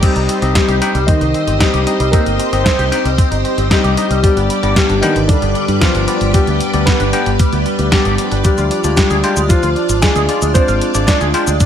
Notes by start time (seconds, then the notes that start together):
0.01 G3 C4 D#4 G4 C5 D#5, kick, closed hi-hat, crash
0.16 C2 D#4, closed hi-hat
0.29 C4, closed hi-hat
0.42 C2 C4 D#4 G4 D#5, closed hi-hat
0.54 G3 C4 G4, kick, snare, closed hi-hat
0.68 C2 G4, closed hi-hat
0.82 C4 D#4 G4 G5, closed hi-hat
0.95 C2 G3, closed hi-hat
1.07 D#3 C4 D#4, kick, closed hi-hat
1.21 C2 D#4, closed hi-hat
1.34 C4, closed hi-hat
1.47 G1 C4, closed hi-hat
1.59 G3 C4 D#4 G4 D#5, kick, snare, closed hi-hat
1.74 C2 G4, closed hi-hat
1.87 C4 D#4 G4 D#5, closed hi-hat
2.00 C2 G3, closed hi-hat
2.12 A#3 C4 D#4 G4 A#4 D#5, kick, closed hi-hat
2.26 G1 D#4, closed hi-hat
2.39 C4, closed hi-hat
2.52 G1 C4 D#4 G4 D#5, closed hi-hat
2.64 C4 C5, kick, snare, closed hi-hat
2.79 C2 G4, closed hi-hat
2.92 C4 D#4 G4 G5, closed hi-hat
3.05 C2 G3, closed hi-hat
3.18 C4, kick, closed hi-hat
3.31 G1 D#4, closed hi-hat
3.44 C4, closed hi-hat
3.58 G1 C4, closed hi-hat
3.70 G3 C4 D#4 G4 D#5, kick, snare, closed hi-hat
3.84 C2 G4, closed hi-hat
3.97 C4 D#4 G4 D#5, closed hi-hat
4.10 C2 G3, closed hi-hat
4.23 G3 B3 D4 G4 B4 D5 D6, kick, closed hi-hat
4.37 G1 B3, closed hi-hat
4.50 G3, closed hi-hat
4.63 G1 G3 B3 D4 G4 D5, closed hi-hat
4.75 G3 G4, kick, snare, closed hi-hat
4.89 G1 D4, closed hi-hat
5.01 D#3 B3 D4 D#4 G4 G5, closed hi-hat
5.16 G1 D3, closed hi-hat
5.28 D3 G3 D4, kick, closed hi-hat
5.42 G1 B3, closed hi-hat
5.55 G3, closed hi-hat
5.68 G2 G3, closed hi-hat
5.80 F3 G3 B3 D4 F4 G4 D5, kick, snare, closed hi-hat
5.95 G1 D4, closed hi-hat
6.08 B3 D4 G4 D5, closed hi-hat
6.21 G1 D3, closed hi-hat
6.33 G3 B3 D4 G4 D5, kick, closed hi-hat
6.47 D2 B3, closed hi-hat
6.60 G3, closed hi-hat
6.74 D2 G3 B3 D4 G4 D5, closed hi-hat
6.86 G3 B3 B4, kick, snare, closed hi-hat
7.00 G1 D4, closed hi-hat
7.13 B3 D4 G4 G5, closed hi-hat
7.26 G1 D3, closed hi-hat
7.39 G3, kick, closed hi-hat
7.53 D2 B3, closed hi-hat
7.66 G3, closed hi-hat
7.79 D2 G3, closed hi-hat
7.91 G3 B3 D4 G4 D5, kick, snare, closed hi-hat
8.05 G1 G4, closed hi-hat
8.18 F3, closed hi-hat
8.31 G1 D4, closed hi-hat
8.44 F3 G3 D4 F4 G4 D5, kick, closed hi-hat, cabasa
8.58 D2 F4, closed hi-hat, cabasa
8.71 D4, closed hi-hat
8.84 D2 G#3 D4 F4 D5, closed hi-hat, cabasa
8.96 G3 D4 G4, kick, snare, closed hi-hat, cabasa
9.10 D2 G#4, closed hi-hat, cabasa
9.24 G#3 D4 F4 G5, closed hi-hat
9.37 D2 G#3, closed hi-hat, cabasa
9.49 F3 D4 F4, kick, closed hi-hat, cabasa
9.63 D2 F4, closed hi-hat, cabasa
9.76 D4, closed hi-hat
9.89 G#1 D4, closed hi-hat, cabasa
10.02 G#3 D4 F4 G#4 D5, kick, snare, closed hi-hat, cabasa
10.16 D2 G#4, closed hi-hat, cabasa
10.29 G#3 D4 F4 D5, closed hi-hat
10.42 D2 G#3, closed hi-hat, cabasa
10.54 G#3 C4 D4 F4 C5 D5, kick, closed hi-hat, cabasa
10.68 G#1 F4, closed hi-hat, cabasa
10.81 D4, closed hi-hat
10.95 G#1 G#3 D4 F4 D5, closed hi-hat, cabasa
11.07 D4 D5, kick, snare, closed hi-hat, cabasa
11.21 D2 G#4, closed hi-hat, cabasa
11.34 G#3 D4 F4 G5, closed hi-hat
11.47 D2 G#3, closed hi-hat, cabasa
11.60 D4, kick, closed hi-hat, cabasa